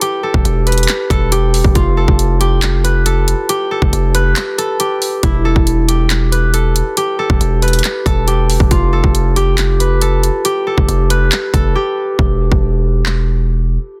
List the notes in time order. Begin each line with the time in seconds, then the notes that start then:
Already playing: E4 A4 B4
0.01 G4, closed hi-hat
0.23 A4
0.34 E1, kick
0.45 E1, closed hi-hat
0.67 B4, closed hi-hat
0.72 closed hi-hat
0.78 closed hi-hat
0.83 closed hi-hat
0.88 clap, closed hi-hat
1.10 E1 A4, kick, closed hi-hat
1.32 G4, closed hi-hat
1.54 open hi-hat
1.64 E1, kick
1.75 F1 F4, kick, closed hi-hat
1.97 A4
2.08 F1, kick
2.19 closed hi-hat
2.40 G4, closed hi-hat
2.62 clap, closed hi-hat
2.84 B4, closed hi-hat
3.06 A4, closed hi-hat
3.28 closed hi-hat
3.49 G4, closed hi-hat
3.71 A4
3.82 F1, kick
3.93 F1, closed hi-hat
4.15 B4, closed hi-hat
4.36 clap, closed hi-hat
4.58 A4, closed hi-hat
4.80 G4, closed hi-hat
5.02 open hi-hat
5.23 E1 E4, kick, closed hi-hat
5.45 A4
5.56 E1, kick
5.67 closed hi-hat
5.88 G4, closed hi-hat
6.10 clap, closed hi-hat
6.32 B4, closed hi-hat
6.54 A4, closed hi-hat
6.76 closed hi-hat
6.97 G4, closed hi-hat
7.19 A4
7.30 E1, kick
7.41 E1, closed hi-hat
7.62 B4, closed hi-hat
7.68 closed hi-hat
7.73 closed hi-hat
7.79 closed hi-hat
7.84 clap, closed hi-hat
8.06 E1 A4, kick, closed hi-hat
8.28 G4, closed hi-hat
8.50 open hi-hat
8.60 E1, kick
8.71 F1 F4, kick, closed hi-hat
8.93 A4
9.04 F1, kick
9.15 closed hi-hat
9.36 G4, closed hi-hat
9.58 clap, closed hi-hat
9.80 B4, closed hi-hat
10.02 A4, closed hi-hat
10.23 closed hi-hat
10.45 G4, closed hi-hat
10.67 A4
10.78 F1, kick
10.88 F1, closed hi-hat
11.10 B4, closed hi-hat
11.32 clap, closed hi-hat
11.54 F1 A4, kick, closed hi-hat
11.75 G4
12.19 E1, kick
12.52 E1, kick
13.06 clap